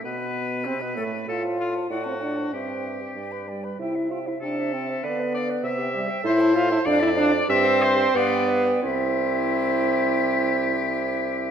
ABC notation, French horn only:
X:1
M:2/4
L:1/16
Q:1/4=95
K:C
V:1 name="French horn"
B,4 C B, A,2 | F4 E C D2 | C4 z2 G,2 | E2 F E D2 C2 |
B,6 G,2 | E2 F E D E D2 | C4 B,4 | C8- |
C8 |]